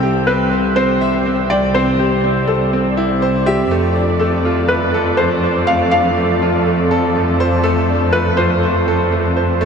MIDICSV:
0, 0, Header, 1, 5, 480
1, 0, Start_track
1, 0, Tempo, 491803
1, 1708, Time_signature, 4, 2, 24, 8
1, 9418, End_track
2, 0, Start_track
2, 0, Title_t, "Felt piano"
2, 0, Program_c, 0, 0
2, 0, Note_on_c, 0, 69, 77
2, 262, Note_on_c, 0, 71, 79
2, 278, Note_off_c, 0, 69, 0
2, 741, Note_on_c, 0, 72, 91
2, 760, Note_off_c, 0, 71, 0
2, 1464, Note_on_c, 0, 74, 92
2, 1487, Note_off_c, 0, 72, 0
2, 1703, Note_on_c, 0, 72, 93
2, 1713, Note_off_c, 0, 74, 0
2, 2414, Note_on_c, 0, 69, 75
2, 2447, Note_off_c, 0, 72, 0
2, 3102, Note_off_c, 0, 69, 0
2, 3380, Note_on_c, 0, 67, 74
2, 4094, Note_on_c, 0, 69, 77
2, 4126, Note_off_c, 0, 67, 0
2, 4573, Note_on_c, 0, 71, 86
2, 4596, Note_off_c, 0, 69, 0
2, 5049, Note_on_c, 0, 72, 87
2, 5075, Note_off_c, 0, 71, 0
2, 5533, Note_on_c, 0, 77, 101
2, 5553, Note_off_c, 0, 72, 0
2, 5758, Note_off_c, 0, 77, 0
2, 5772, Note_on_c, 0, 77, 97
2, 7181, Note_off_c, 0, 77, 0
2, 7451, Note_on_c, 0, 69, 93
2, 7931, Note_on_c, 0, 71, 92
2, 7955, Note_off_c, 0, 69, 0
2, 8170, Note_on_c, 0, 72, 94
2, 8187, Note_off_c, 0, 71, 0
2, 9418, Note_off_c, 0, 72, 0
2, 9418, End_track
3, 0, Start_track
3, 0, Title_t, "Analog synth pad"
3, 0, Program_c, 1, 89
3, 0, Note_on_c, 1, 48, 69
3, 0, Note_on_c, 1, 60, 72
3, 0, Note_on_c, 1, 67, 78
3, 0, Note_on_c, 1, 76, 77
3, 416, Note_on_c, 1, 74, 74
3, 558, Note_off_c, 1, 76, 0
3, 3624, Note_on_c, 1, 53, 85
3, 3626, Note_off_c, 1, 60, 0
3, 3628, Note_off_c, 1, 48, 0
3, 3810, Note_on_c, 1, 69, 76
3, 3943, Note_on_c, 1, 60, 66
3, 5069, Note_off_c, 1, 67, 0
3, 9418, Note_off_c, 1, 53, 0
3, 9418, Note_off_c, 1, 60, 0
3, 9418, Note_off_c, 1, 69, 0
3, 9418, Note_off_c, 1, 74, 0
3, 9418, End_track
4, 0, Start_track
4, 0, Title_t, "Upright piano"
4, 0, Program_c, 2, 0
4, 0, Control_c, 2, 64, 127
4, 0, Note_on_c, 2, 60, 86
4, 0, Note_on_c, 2, 67, 68
4, 0, Note_on_c, 2, 72, 68
4, 0, Note_on_c, 2, 76, 85
4, 0, Note_on_c, 2, 79, 92
4, 29, Note_off_c, 2, 67, 0
4, 29, Note_on_c, 2, 67, 68
4, 257, Note_off_c, 2, 67, 0
4, 264, Note_off_c, 2, 60, 0
4, 264, Note_on_c, 2, 60, 84
4, 494, Note_off_c, 2, 60, 0
4, 502, Note_off_c, 2, 72, 0
4, 502, Note_on_c, 2, 72, 67
4, 642, Note_off_c, 2, 72, 0
4, 747, Note_on_c, 2, 60, 87
4, 976, Note_off_c, 2, 60, 0
4, 988, Note_off_c, 2, 76, 0
4, 988, Note_on_c, 2, 76, 81
4, 1125, Note_off_c, 2, 76, 0
4, 1228, Note_on_c, 2, 60, 66
4, 1456, Note_off_c, 2, 60, 0
4, 1467, Note_off_c, 2, 79, 0
4, 1467, Note_on_c, 2, 79, 69
4, 1696, Note_off_c, 2, 79, 0
4, 1706, Note_on_c, 2, 60, 86
4, 1935, Note_off_c, 2, 60, 0
4, 1946, Note_on_c, 2, 67, 70
4, 2175, Note_off_c, 2, 67, 0
4, 2184, Note_on_c, 2, 60, 69
4, 2323, Note_off_c, 2, 60, 0
4, 2424, Note_on_c, 2, 72, 64
4, 2563, Note_off_c, 2, 72, 0
4, 2666, Note_on_c, 2, 60, 71
4, 2895, Note_off_c, 2, 60, 0
4, 2902, Note_on_c, 2, 64, 80
4, 3133, Note_off_c, 2, 64, 0
4, 3144, Note_on_c, 2, 72, 82
4, 3374, Note_off_c, 2, 72, 0
4, 3381, Note_on_c, 2, 76, 94
4, 3613, Note_off_c, 2, 76, 0
4, 3622, Note_on_c, 2, 57, 96
4, 3642, Control_c, 2, 64, 0
4, 3782, Control_c, 2, 64, 127
4, 3853, Note_off_c, 2, 57, 0
4, 3861, Note_on_c, 2, 62, 66
4, 4092, Note_off_c, 2, 62, 0
4, 4105, Note_on_c, 2, 57, 90
4, 4335, Note_off_c, 2, 57, 0
4, 4345, Note_on_c, 2, 65, 68
4, 4483, Note_off_c, 2, 65, 0
4, 4584, Note_on_c, 2, 57, 86
4, 4814, Note_off_c, 2, 57, 0
4, 4824, Note_on_c, 2, 69, 88
4, 4963, Note_off_c, 2, 69, 0
4, 5067, Note_on_c, 2, 57, 68
4, 5295, Note_off_c, 2, 57, 0
4, 5304, Note_on_c, 2, 72, 66
4, 5534, Note_off_c, 2, 72, 0
4, 5546, Note_on_c, 2, 57, 88
4, 5775, Note_off_c, 2, 57, 0
4, 5782, Note_on_c, 2, 62, 72
4, 6013, Note_off_c, 2, 62, 0
4, 6022, Note_on_c, 2, 57, 73
4, 6162, Note_off_c, 2, 57, 0
4, 6264, Note_on_c, 2, 65, 64
4, 6403, Note_off_c, 2, 65, 0
4, 6509, Note_on_c, 2, 57, 72
4, 6737, Note_off_c, 2, 57, 0
4, 6744, Note_on_c, 2, 69, 91
4, 6883, Note_off_c, 2, 69, 0
4, 6983, Note_on_c, 2, 57, 68
4, 7214, Note_off_c, 2, 57, 0
4, 7224, Note_on_c, 2, 72, 94
4, 7363, Note_off_c, 2, 72, 0
4, 7464, Note_on_c, 2, 57, 97
4, 7694, Note_off_c, 2, 57, 0
4, 7707, Note_on_c, 2, 62, 74
4, 7936, Note_off_c, 2, 62, 0
4, 7943, Note_on_c, 2, 57, 92
4, 8174, Note_off_c, 2, 57, 0
4, 8181, Note_on_c, 2, 65, 64
4, 8321, Note_off_c, 2, 65, 0
4, 8424, Note_on_c, 2, 57, 87
4, 8654, Note_off_c, 2, 57, 0
4, 8665, Note_on_c, 2, 69, 85
4, 8804, Note_off_c, 2, 69, 0
4, 8904, Note_on_c, 2, 57, 73
4, 9134, Note_off_c, 2, 57, 0
4, 9140, Note_on_c, 2, 72, 73
4, 9372, Note_off_c, 2, 72, 0
4, 9378, Note_on_c, 2, 57, 98
4, 9418, Note_off_c, 2, 57, 0
4, 9418, End_track
5, 0, Start_track
5, 0, Title_t, "Cello section"
5, 0, Program_c, 3, 48
5, 0, Note_on_c, 3, 36, 86
5, 3602, Note_off_c, 3, 36, 0
5, 3625, Note_on_c, 3, 41, 88
5, 9418, Note_off_c, 3, 41, 0
5, 9418, End_track
0, 0, End_of_file